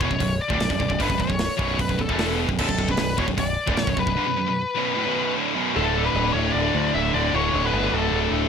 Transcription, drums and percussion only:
0.01 kick loud
0.11 kick medium
0.20 kick medium
0.20 open hi-hat medium
0.50 kick loud
0.60 snare loud
0.60 open hi-hat medium
0.70 kick medium
0.80 kick medium
0.90 kick medium
1.00 kick medium
1.00 open hi-hat medium
1.10 kick loud
1.20 kick medium
1.30 kick medium
1.39 snare loud
1.39 open hi-hat medium
1.59 kick loud
1.79 kick loud
1.79 open hi-hat medium
1.89 kick medium
1.99 kick medium
2.09 kick medium
2.19 snare loud
2.19 open hi-hat medium
2.49 kick medium
2.59 kick loud
2.59 crash loud
2.69 kick medium
2.79 kick medium
2.89 kick medium
2.97 snare loud
2.97 open hi-hat medium
3.18 kick loud
3.28 kick medium
3.38 kick loud
3.38 open hi-hat medium
3.68 kick loud
3.77 snare loud
3.77 open hi-hat medium
3.87 kick medium
3.97 kick medium
4.07 kick medium

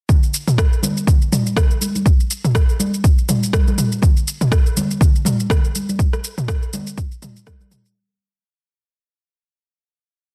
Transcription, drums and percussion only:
0.09 kick loud
0.09 low conga medium
0.09 shaker soft
0.23 shaker soft
0.34 shaker medium
0.48 mid tom medium
0.48 shaker soft
0.58 kick loud
0.58 cross-stick loud
0.58 shaker soft
0.73 shaker soft
0.83 high conga medium
0.83 low conga medium
0.83 shaker medium
0.97 shaker soft
1.07 kick loud
1.07 low conga medium
1.07 shaker soft
1.22 shaker soft
1.32 mid tom medium
1.32 high conga medium
1.32 shaker medium
1.46 shaker soft
1.57 kick loud
1.57 cross-stick loud
1.57 low conga medium
1.57 shaker soft
1.71 shaker soft
1.81 high conga medium
1.81 shaker medium
1.95 high conga medium
1.95 shaker soft
2.06 kick loud
2.06 shaker soft
2.20 shaker soft
2.31 shaker medium
2.45 mid tom medium
2.45 shaker soft
2.55 kick loud
2.55 cross-stick loud
2.55 shaker medium
2.69 shaker soft
2.80 high conga medium
2.80 shaker medium
2.94 shaker soft
3.04 kick loud
3.04 shaker medium
3.18 shaker soft
3.29 mid tom medium
3.29 high conga medium
3.29 shaker medium
3.43 shaker soft
3.53 kick loud
3.53 cross-stick loud
3.53 high conga medium
3.53 shaker medium
3.67 high conga medium
3.67 shaker soft
3.78 mid tom medium
3.78 high conga medium
3.78 shaker medium
3.92 shaker soft
4.02 kick loud
4.02 low conga medium
4.02 shaker medium
4.17 shaker soft
4.28 shaker medium
4.41 mid tom medium
4.41 shaker soft
4.52 kick loud
4.52 cross-stick loud
4.52 shaker medium
4.66 shaker soft
4.77 high conga medium
4.77 low conga medium
4.77 shaker medium
4.91 shaker soft
5.01 kick loud
5.01 low conga loud
5.01 shaker medium
5.16 shaker soft
5.25 mid tom medium
5.25 high conga loud
5.25 shaker medium
5.40 shaker soft
5.50 kick loud
5.50 cross-stick loud
5.50 low conga medium
5.50 shaker medium
5.64 shaker soft
5.75 high conga medium
5.75 shaker medium
5.89 high conga medium
5.89 shaker soft
5.99 kick loud
5.99 shaker medium
6.13 cross-stick medium
6.13 shaker soft
6.24 shaker medium
6.38 mid tom medium
6.38 shaker soft
6.48 kick loud
6.48 cross-stick loud
6.48 shaker medium
6.63 shaker soft
6.73 high conga medium
6.73 low conga medium
6.73 shaker medium
6.87 shaker soft
6.98 kick loud
6.98 shaker medium
7.12 shaker soft
7.22 mid tom medium
7.22 high conga medium
7.22 shaker medium
7.36 shaker soft
7.46 kick loud
7.46 cross-stick loud
7.46 high conga loud
7.46 shaker medium
7.61 high conga medium
7.61 shaker soft
7.71 mid tom medium
7.71 high conga medium
7.71 shaker medium
7.86 shaker soft

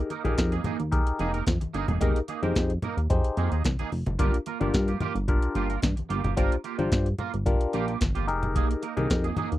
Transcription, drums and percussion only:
0.10 closed hi-hat medium
0.10 muted conga soft
0.25 closed hi-hat medium
0.25 high conga medium
0.38 kick loud
0.38 snare loud
0.38 closed hi-hat medium
0.38 muted conga soft
0.52 closed hi-hat medium
0.64 closed hi-hat medium
0.64 high conga medium
0.64 low conga medium
0.80 closed hi-hat medium
0.92 kick loud
0.92 closed hi-hat medium
1.07 closed hi-hat medium
1.19 closed hi-hat medium
1.19 muted conga soft
1.34 closed hi-hat medium
1.47 kick loud
1.47 snare loud
1.47 closed hi-hat medium
1.47 muted conga soft
1.47 high conga medium
1.61 closed hi-hat medium
1.61 high conga medium
1.74 closed hi-hat medium
1.74 muted conga soft
1.88 closed hi-hat medium
1.88 low conga medium
2.01 kick loud
2.01 closed hi-hat loud
2.01 muted conga soft
2.01 low conga medium
2.16 closed hi-hat medium
2.28 closed hi-hat medium
2.28 muted conga soft
2.43 closed hi-hat medium
2.43 high conga medium
2.56 kick loud
2.56 snare loud
2.56 closed hi-hat medium
2.56 muted conga soft
2.70 closed hi-hat medium
2.82 closed hi-hat medium
2.82 muted conga soft
2.82 low conga medium
2.98 closed hi-hat medium
3.10 kick loud
3.10 closed hi-hat medium
3.24 closed hi-hat medium
3.37 closed hi-hat medium
3.52 closed hi-hat medium
3.64 kick loud
3.64 snare loud
3.64 closed hi-hat medium
3.64 high conga medium
3.79 closed hi-hat medium
3.79 high conga soft
3.92 open hi-hat medium
3.92 muted conga soft
4.06 closed hi-hat medium
4.06 low conga medium
4.19 kick loud
4.19 closed hi-hat loud
4.19 muted conga soft
4.34 closed hi-hat medium
4.46 closed hi-hat medium
4.46 muted conga soft
4.61 closed hi-hat medium
4.61 high conga medium
4.74 kick loud
4.74 snare loud
4.74 closed hi-hat medium
4.74 muted conga soft
4.88 closed hi-hat medium
5.00 closed hi-hat medium
5.00 muted conga soft
5.00 high conga medium
5.00 low conga medium
5.16 closed hi-hat medium
5.28 kick loud
5.28 closed hi-hat medium
5.28 muted conga soft
5.42 closed hi-hat medium
5.55 closed hi-hat medium
5.55 muted conga soft
5.70 closed hi-hat medium
5.82 kick loud
5.82 snare loud
5.82 closed hi-hat loud
5.82 muted conga soft
5.82 high conga medium
5.97 closed hi-hat medium
5.97 high conga soft
6.10 closed hi-hat medium
6.10 muted conga soft
6.24 closed hi-hat medium
6.24 low conga medium
6.37 kick loud
6.37 closed hi-hat loud
6.52 closed hi-hat medium
6.64 closed hi-hat medium
6.79 closed hi-hat medium
6.79 high conga medium
6.92 kick loud
6.92 snare loud
6.92 closed hi-hat medium
7.06 closed hi-hat medium
7.18 closed hi-hat medium
7.18 muted conga soft
7.18 low conga medium
7.34 closed hi-hat medium
7.46 kick loud
7.46 closed hi-hat medium
7.46 muted conga soft
7.61 closed hi-hat medium
7.73 closed hi-hat medium
7.73 muted conga soft
7.88 closed hi-hat medium
8.01 kick loud
8.01 snare loud
8.01 closed hi-hat loud
8.01 muted conga soft
8.01 high conga medium
8.15 closed hi-hat medium
8.15 high conga medium
8.28 closed hi-hat medium
8.28 muted conga soft
8.43 closed hi-hat medium
8.43 low conga medium
8.56 kick loud
8.56 closed hi-hat loud
8.56 muted conga soft
8.71 closed hi-hat medium
8.83 closed hi-hat medium
8.97 closed hi-hat medium
8.97 high conga medium
9.10 kick loud
9.10 snare loud
9.10 closed hi-hat medium
9.10 muted conga soft
9.24 closed hi-hat medium
9.37 closed hi-hat medium
9.37 muted conga soft
9.37 high conga medium
9.37 low conga medium
9.52 closed hi-hat medium

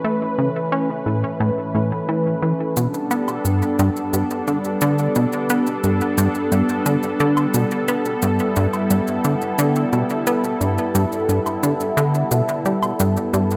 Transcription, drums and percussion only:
2.77 cabasa medium
2.94 cabasa soft
3.11 cabasa medium
3.28 cabasa soft
3.28 low woodblock soft
3.45 cabasa medium
3.62 cabasa soft
3.79 cabasa medium
3.96 cabasa soft
4.13 cabasa medium
4.30 cabasa soft
4.47 cabasa soft
4.64 cabasa soft
4.81 cabasa medium
4.98 cabasa soft
5.15 cabasa medium
5.32 cabasa soft
5.50 cabasa medium
5.67 cabasa soft
5.84 cabasa medium
6.01 cabasa soft
6.18 cabasa medium
6.35 cabasa soft
6.52 cabasa medium
6.69 cabasa soft
6.86 cabasa medium
7.03 cabasa soft
7.20 cabasa soft
7.37 cabasa soft
7.37 low woodblock medium
7.54 cabasa medium
7.71 cabasa soft
7.88 cabasa medium
8.05 cabasa soft
8.22 cabasa medium
8.39 cabasa soft
8.56 cabasa medium
8.73 cabasa soft
8.73 low woodblock soft
8.90 cabasa medium
9.07 cabasa soft
9.24 cabasa medium
9.41 cabasa soft
9.58 cabasa medium
9.76 cabasa soft
9.93 cabasa soft
10.10 cabasa soft
10.27 cabasa medium
10.44 cabasa soft
10.61 cabasa medium
10.78 cabasa soft
10.95 cabasa medium
11.12 cabasa soft
11.29 cabasa medium
11.46 cabasa soft
11.46 low woodblock soft
11.63 cabasa medium
11.80 cabasa soft
11.97 cabasa medium
12.14 cabasa soft
12.31 cabasa medium
12.49 cabasa soft
12.65 cabasa soft
12.83 cabasa soft
12.83 low woodblock medium
13.00 cabasa medium
13.17 cabasa soft
13.34 cabasa medium
13.51 cabasa soft

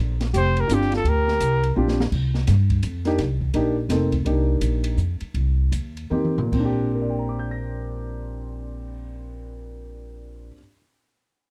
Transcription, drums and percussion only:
0.21 snare soft
0.21 ride soft
0.34 hi-hat pedal medium
0.34 ride medium
0.57 ride soft
0.69 hi-hat pedal medium
0.69 ride medium
0.81 snare soft
0.92 snare soft
0.92 ride soft
1.05 ride medium
1.28 snare soft
1.40 hi-hat pedal medium
1.40 ride medium
1.63 ride soft
1.88 snare soft
2.00 snare medium
2.12 kick medium
2.12 crash medium
2.34 snare soft
2.47 snare soft
2.47 hi-hat pedal soft
2.47 ride medium
2.70 kick medium
2.70 ride soft
2.83 hi-hat pedal soft
2.83 ride medium
3.05 snare soft
3.05 ride soft
3.18 snare soft
3.18 ride medium
3.41 kick soft
3.54 ride medium
3.90 snare soft
3.90 hi-hat pedal soft
3.90 ride medium
4.12 kick soft
4.12 ride soft
4.26 ride medium
4.61 hi-hat pedal soft
4.61 ride medium
4.84 ride medium
4.97 hi-hat pedal medium
5.20 ride soft
5.34 ride soft
5.72 hi-hat pedal soft
5.72 ride medium
5.97 ride soft
6.11 mid tom soft
6.25 mid tom soft
6.38 floor tom medium
6.52 kick soft
6.52 crash soft
6.78 cymbal swell soft

